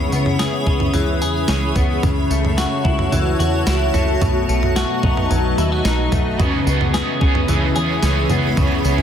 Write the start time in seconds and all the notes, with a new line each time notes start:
Already playing: C#3 E3 B3 C#4 G#4 C#5 E5 B5
0.12 C#2 B3, tambourine
0.26 floor tom
0.39 G#4, snare, tambourine
0.67 C#2 C#4, kick
0.80 floor tom
0.94 C#2 E3, floor tom, tambourine
1.21 E2 G#4, tambourine
1.48 C#2 C#4, snare, tambourine
1.76 C#2 B3, kick, floor tom, tambourine
2.03 C#2 C#3 F#4 C#5 A5, kick, floor tom, tambourine
2.30 C#2 A3, tambourine
2.45 floor tom
2.57 F#4, snare, tambourine
2.85 C#2 E4, kick
2.99 floor tom
3.12 C#2 E3, floor tom, tambourine
3.39 E2 F#4, tambourine
3.66 C#2 E4, snare, tambourine
3.94 C#2 A3, floor tom, tambourine
4.20 B1 B2 B4 D#5, kick, floor tom, tambourine
4.49 B1 A3, tambourine
4.63 floor tom
4.76 F#4, snare, tambourine
5.03 B1 D#4, kick, floor tom
5.17 floor tom
5.31 B1 F#3, floor tom, tambourine
5.58 D#2 E4, tambourine
5.72 F#4
5.85 B1 D#4, snare, tambourine
6.12 B1 A3, kick, floor tom, tambourine
6.38 C#2 C#3 E3 B3 C#4 G#4 C#5 E5 B5, kick, floor tom, tambourine
6.65 C#2 B3 C#4 G#4, tambourine
6.70 B3
6.81 floor tom
6.93 E3 B3 C#4 G#4, snare, tambourine
6.98 G#4
7.20 C#2 C#4 G#4, kick
7.25 B3
7.35 floor tom
7.47 C#2 C#3 E3 B3 C#4 G#4, floor tom, tambourine
7.74 E2 C#4 G#4, tambourine
7.79 B3
8.01 C#2 E3 B3 C#4, snare, tambourine
8.06 G#4
8.29 C#2 B3 C#4 G#4, floor tom, tambourine
8.33 B3
8.56 C#2 C#3 E3 B3 C#4 G#4, kick, floor tom, tambourine
8.83 C#2 B3 C#4 G#4, tambourine
8.88 B3
8.98 floor tom